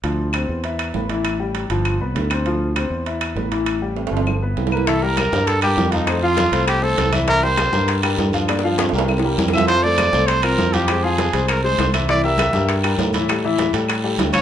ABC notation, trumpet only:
X:1
M:4/4
L:1/8
Q:1/4=200
K:Cmix
V:1 name="Trumpet"
z8 | z8 | z8 | z6 z =B |
A B3 A G2 _E- | _E F3 G A2 z | B c4 z3 | z6 z e |
c d3 c B2 G- | G _A3 B c2 z | d e4 z3 | z6 z _d |]